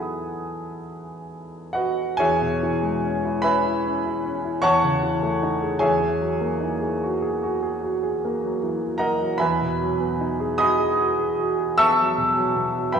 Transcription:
Already playing: E2 E3 F#3 B3 D#4 G#4 A4 E5 F#5 G#5 A5
0.00 B5 D#6
1.73 F#4 B4 D#5 F#5
2.17 E2 G#4 C#5 E5 G#5
2.42 B2
2.63 E3
2.83 G#3
3.04 C#4
3.25 E4
3.42 C#4 B4 E5 G#5 B5
3.65 E4
3.86 C#4
4.05 E4
4.25 C#4
4.45 E4
4.62 E2 C#5 F#5 A5 C#6
4.84 C#3
5.03 E3
5.23 A3
5.43 D#4
5.62 G#4
5.79 E2 G#4 C#5 E5 G#5
6.00 E3
6.20 F#3
6.41 A#3
6.60 D#4
6.81 G#4
7.03 F#4
7.22 G#4
7.43 F#4
7.63 G#4
7.83 F#4
8.03 G#4
8.25 A#3
8.43 F#3
8.63 E3
8.82 F#3
8.98 E3 A#4 D#5 F#5 A#5
9.21 F#3
9.38 E2 B4 E5 G#5 B5
9.61 B2
9.81 F#3
10.00 B3
10.21 D#4
10.40 G#4
10.58 F#4 D#5 G#5 B5 D#6
10.79 G#4
11.00 F#4
11.19 G#4
11.39 F#4
11.59 G#4
11.78 B3 E5 A5 C#6 E6
11.98 F#3
12.17 B2
12.36 F#3
12.55 B2
12.75 F#3
12.92 G2 B4 E5 G5 B5

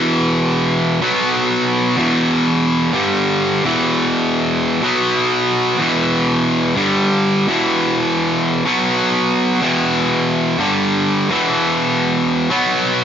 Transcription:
Already playing: E2 B2 E3
1.02 B2 F#3 B3
1.96 E2 B2 E3
2.93 G2 D3 G3
3.64 E2 B2 E3
4.83 B2 F#3 B3
5.79 E2 B2 E3
6.75 G2 D3 G3
7.48 E2 B2 E3
8.65 B2 F#3 B3
9.61 E2 B2 E3
10.58 G2 D3 G3
11.29 E2 B2 E3
12.50 B2 F#3 B3

